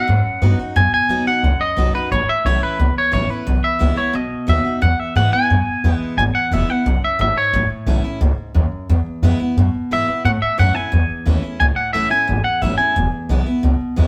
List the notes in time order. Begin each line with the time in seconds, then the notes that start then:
Already playing: F#5
0.08 F#2 G#2
0.25 muted upright bass stroke
0.42 G2 F#3 B3 D#4 F#4
0.59 D#4 F#4, muted upright bass stroke
0.76 F#2 B2 G#5
0.92 G#5, muted upright bass stroke
1.09 D#2 F#3 B3 D#4 F#4
1.26 D#4 F#4 F#5, muted upright bass stroke
1.43 C#2 F#2
1.60 D#5, muted upright bass stroke
1.76 B1 F#3 B3 D#4 F#4
1.94 D#4 F#4 B4, muted upright bass stroke
2.11 A1 A2 C#5
2.28 E5, muted upright bass stroke
2.45 B1 E3 A3 C#4 E4 C#5
2.63 B4
2.79 C#2 E2
2.96 C#5, muted upright bass stroke
3.12 A1 E3 A3 C#4 E4 C#5
3.29 C#4 E4 B4, muted upright bass stroke
3.47 B1 E2
3.64 E5, muted upright bass stroke
3.79 C#2 E3 G#3 B3 E4
3.96 B3 E4 C#5, muted upright bass stroke
4.13 B1 B2 D#5
4.32 muted upright bass stroke
4.47 D#2 F#3 B3 D#4 F#4 E5
4.64 D#4 F#4, muted upright bass stroke
4.82 E2 F#5
4.99 E5, muted upright bass stroke
5.15 G#2 E3 G#3 B3 E4 F#5
5.32 B3 E4 G#5, muted upright bass stroke
5.50 F#2 B2
5.67 muted upright bass stroke
5.84 E2 E3 G#3 B3 E4
5.96 F#5
6.00 muted upright bass stroke
6.17 G#1 E2 G#5
6.34 F#5, muted upright bass stroke
6.51 E1 E3 G#3 B3 E4 E5
6.69 B3 E4 F#5
6.86 B1 F#2
7.02 E5, muted upright bass stroke
7.19 G#1 G#2 E5
7.36 C#5, muted upright bass stroke
7.53 A1 A2
7.70 muted upright bass stroke
7.86 B1 E3 A3 C#4 E4
8.04 C#4 E4, muted upright bass stroke
8.21 C#2 G#2
8.38 muted upright bass stroke
8.54 D#2 F#2
8.72 muted upright bass stroke
8.89 E2
9.06 muted upright bass stroke
9.22 F2 E3 G#3 B3 E4
9.40 B3 E4, muted upright bass stroke
9.57 F#2 B2
9.74 muted upright bass stroke
9.91 G#2 E3 G#3 B3 E4 E5
10.08 B3 E4, muted upright bass stroke
10.25 A2 F#5
10.42 E5, muted upright bass stroke
10.58 F#2 E3 A3 C#4 E4 F#5
10.74 C#4 E4 G#5, muted upright bass stroke
10.92 E2
11.10 muted upright bass stroke
11.26 D#2 E3 A3 C#4 E4
11.42 C#4 E4, muted upright bass stroke
11.60 C#2 A2 G#5
11.76 F#5, muted upright bass stroke
11.93 B1 E3 A3 C#4 E4 E5
12.10 C#4 E4 G#5, muted upright bass stroke
12.28 G#1 E2
12.44 F#5, muted upright bass stroke
12.62 A1 E3 A3 C#4 E4 E5
12.78 C#4 E4 G#5, muted upright bass stroke
12.96 E1 E2
13.12 muted upright bass stroke
13.29 B1 E3 G#3 B3 E4
13.46 B3 E4, muted upright bass stroke
13.63 C#2 B2
13.81 muted upright bass stroke
13.96 D#2 E3 G#3 B3 E4